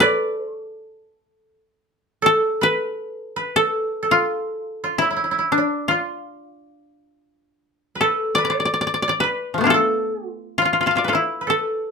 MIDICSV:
0, 0, Header, 1, 3, 480
1, 0, Start_track
1, 0, Tempo, 718563
1, 27, Time_signature, 4, 2, 24, 8
1, 988, Tempo, 745342
1, 2908, Tempo, 720288
1, 4348, Tempo, 691244
1, 8022, End_track
2, 0, Start_track
2, 0, Title_t, "Koto"
2, 0, Program_c, 0, 107
2, 0, Note_on_c, 0, 64, 98
2, 0, Note_on_c, 0, 69, 85
2, 0, Note_on_c, 0, 71, 100
2, 2, Note_off_c, 0, 71, 0
2, 2, Note_on_c, 0, 71, 103
2, 236, Note_off_c, 0, 71, 0
2, 236, Note_on_c, 0, 72, 103
2, 349, Note_off_c, 0, 72, 0
2, 349, Note_on_c, 0, 73, 103
2, 362, Note_off_c, 0, 64, 0
2, 456, Note_off_c, 0, 73, 0
2, 456, Note_on_c, 0, 74, 103
2, 1029, Note_off_c, 0, 69, 0
2, 1441, Note_off_c, 0, 74, 0
2, 1491, Note_on_c, 0, 69, 80
2, 1730, Note_on_c, 0, 71, 83
2, 2326, Note_off_c, 0, 69, 0
2, 2328, Note_on_c, 0, 69, 68
2, 2684, Note_on_c, 0, 65, 68
2, 2874, Note_off_c, 0, 71, 0
2, 3257, Note_on_c, 0, 64, 60
2, 3297, Note_off_c, 0, 65, 0
2, 3576, Note_off_c, 0, 69, 0
2, 3613, Note_on_c, 0, 62, 55
2, 3855, Note_on_c, 0, 65, 56
2, 3895, Note_off_c, 0, 64, 0
2, 5267, Note_off_c, 0, 62, 0
2, 5310, Note_on_c, 0, 69, 67
2, 5352, Note_off_c, 0, 65, 0
2, 5548, Note_on_c, 0, 74, 74
2, 5613, Note_off_c, 0, 74, 0
2, 5616, Note_on_c, 0, 74, 52
2, 5649, Note_off_c, 0, 74, 0
2, 5651, Note_on_c, 0, 74, 55
2, 5718, Note_off_c, 0, 74, 0
2, 5721, Note_on_c, 0, 74, 47
2, 5757, Note_off_c, 0, 74, 0
2, 5759, Note_on_c, 0, 74, 55
2, 5814, Note_off_c, 0, 74, 0
2, 5817, Note_on_c, 0, 74, 47
2, 5865, Note_off_c, 0, 74, 0
2, 5868, Note_on_c, 0, 74, 55
2, 5906, Note_off_c, 0, 74, 0
2, 5908, Note_on_c, 0, 74, 52
2, 5955, Note_off_c, 0, 74, 0
2, 5958, Note_on_c, 0, 74, 53
2, 6013, Note_off_c, 0, 74, 0
2, 6016, Note_on_c, 0, 74, 52
2, 6061, Note_off_c, 0, 74, 0
2, 6063, Note_on_c, 0, 74, 60
2, 6140, Note_on_c, 0, 71, 73
2, 6375, Note_on_c, 0, 53, 32
2, 6401, Note_on_c, 0, 57, 34
2, 6421, Note_on_c, 0, 59, 37
2, 6443, Note_on_c, 0, 62, 42
2, 6454, Note_on_c, 0, 64, 44
2, 6462, Note_on_c, 0, 65, 49
2, 6484, Note_off_c, 0, 69, 0
2, 6487, Note_on_c, 0, 69, 72
2, 6496, Note_off_c, 0, 53, 0
2, 7095, Note_off_c, 0, 65, 0
2, 7097, Note_on_c, 0, 65, 61
2, 7139, Note_off_c, 0, 64, 0
2, 7145, Note_off_c, 0, 65, 0
2, 7148, Note_on_c, 0, 65, 46
2, 7175, Note_off_c, 0, 74, 0
2, 7198, Note_off_c, 0, 65, 0
2, 7201, Note_on_c, 0, 65, 47
2, 7251, Note_off_c, 0, 65, 0
2, 7254, Note_on_c, 0, 65, 45
2, 7269, Note_on_c, 0, 83, 26
2, 7292, Note_on_c, 0, 81, 26
2, 7294, Note_off_c, 0, 65, 0
2, 7297, Note_on_c, 0, 65, 54
2, 7325, Note_on_c, 0, 77, 30
2, 7357, Note_on_c, 0, 76, 33
2, 7362, Note_off_c, 0, 65, 0
2, 7365, Note_on_c, 0, 65, 46
2, 7373, Note_off_c, 0, 71, 0
2, 7376, Note_on_c, 0, 74, 36
2, 7419, Note_on_c, 0, 71, 35
2, 7441, Note_off_c, 0, 69, 0
2, 7444, Note_on_c, 0, 69, 41
2, 7448, Note_off_c, 0, 65, 0
2, 7451, Note_on_c, 0, 65, 41
2, 7491, Note_on_c, 0, 64, 51
2, 7493, Note_off_c, 0, 76, 0
2, 7533, Note_off_c, 0, 77, 0
2, 7732, Note_off_c, 0, 69, 0
2, 7735, Note_on_c, 0, 69, 61
2, 8022, Note_off_c, 0, 57, 0
2, 8022, Note_off_c, 0, 59, 0
2, 8022, Note_off_c, 0, 62, 0
2, 8022, Note_off_c, 0, 64, 0
2, 8022, Note_off_c, 0, 65, 0
2, 8022, Note_off_c, 0, 69, 0
2, 8022, Note_off_c, 0, 71, 0
2, 8022, Note_off_c, 0, 74, 0
2, 8022, Note_off_c, 0, 81, 0
2, 8022, Note_off_c, 0, 83, 0
2, 8022, End_track
3, 0, Start_track
3, 0, Title_t, "Koto"
3, 0, Program_c, 1, 107
3, 0, Note_on_c, 1, 64, 82
3, 0, Note_on_c, 1, 69, 90
3, 0, Note_on_c, 1, 71, 86
3, 13, Note_on_c, 1, 74, 90
3, 361, Note_off_c, 1, 64, 0
3, 747, Note_off_c, 1, 71, 0
3, 1057, Note_off_c, 1, 69, 0
3, 1447, Note_off_c, 1, 74, 0
3, 1467, Note_on_c, 1, 69, 73
3, 1719, Note_on_c, 1, 71, 73
3, 2199, Note_off_c, 1, 71, 0
3, 2201, Note_on_c, 1, 71, 67
3, 2327, Note_off_c, 1, 69, 0
3, 2330, Note_on_c, 1, 69, 62
3, 2626, Note_off_c, 1, 69, 0
3, 2628, Note_on_c, 1, 69, 44
3, 2683, Note_on_c, 1, 65, 57
3, 3156, Note_off_c, 1, 65, 0
3, 3159, Note_on_c, 1, 65, 50
3, 3280, Note_on_c, 1, 64, 55
3, 3320, Note_off_c, 1, 65, 0
3, 3335, Note_off_c, 1, 64, 0
3, 3338, Note_on_c, 1, 64, 40
3, 3360, Note_off_c, 1, 71, 0
3, 3375, Note_off_c, 1, 64, 0
3, 3378, Note_on_c, 1, 64, 46
3, 3425, Note_off_c, 1, 64, 0
3, 3427, Note_on_c, 1, 64, 38
3, 3473, Note_off_c, 1, 64, 0
3, 3476, Note_on_c, 1, 64, 45
3, 3522, Note_off_c, 1, 64, 0
3, 3525, Note_on_c, 1, 64, 42
3, 3652, Note_on_c, 1, 62, 53
3, 3873, Note_on_c, 1, 65, 52
3, 3887, Note_off_c, 1, 69, 0
3, 3913, Note_off_c, 1, 64, 0
3, 5274, Note_on_c, 1, 71, 46
3, 5307, Note_off_c, 1, 62, 0
3, 5316, Note_on_c, 1, 69, 65
3, 5371, Note_off_c, 1, 65, 0
3, 5570, Note_off_c, 1, 71, 0
3, 5570, Note_on_c, 1, 71, 69
3, 5716, Note_off_c, 1, 71, 0
3, 5716, Note_on_c, 1, 74, 69
3, 6051, Note_off_c, 1, 74, 0
3, 6054, Note_on_c, 1, 74, 66
3, 6164, Note_on_c, 1, 71, 63
3, 6511, Note_off_c, 1, 69, 0
3, 6514, Note_on_c, 1, 69, 63
3, 6896, Note_off_c, 1, 69, 0
3, 6896, Note_on_c, 1, 65, 63
3, 7123, Note_off_c, 1, 65, 0
3, 7123, Note_on_c, 1, 65, 54
3, 7166, Note_off_c, 1, 74, 0
3, 7397, Note_off_c, 1, 71, 0
3, 7479, Note_on_c, 1, 64, 53
3, 7520, Note_off_c, 1, 65, 0
3, 7674, Note_on_c, 1, 71, 41
3, 7714, Note_on_c, 1, 69, 52
3, 8022, Note_off_c, 1, 64, 0
3, 8022, Note_off_c, 1, 69, 0
3, 8022, Note_off_c, 1, 71, 0
3, 8022, End_track
0, 0, End_of_file